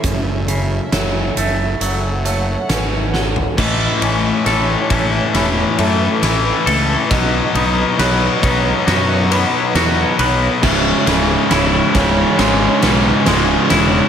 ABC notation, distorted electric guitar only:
X:1
M:4/4
L:1/8
Q:1/4=68
K:Alyd
V:1 name="Distorted electric guitar" clef=bass
z8 | [A,,E,A,] [A,,E,A,] [A,,E,A,] [A,,E,A,] [A,,E,A,] [A,,E,A,] [A,,E,A,] [A,,E,A,] | [B,,F,B,] [B,,F,B,] [B,,F,B,] [B,,F,B,] [B,,F,B,] [B,,F,B,] [B,,F,B,] [B,,F,B,] | [C,,G,,C,] [C,,G,,C,] [C,,G,,C,] [C,,G,,C,] [C,,G,,C,] [C,,G,,C,] [C,,G,,C,] [C,,G,,C,] |]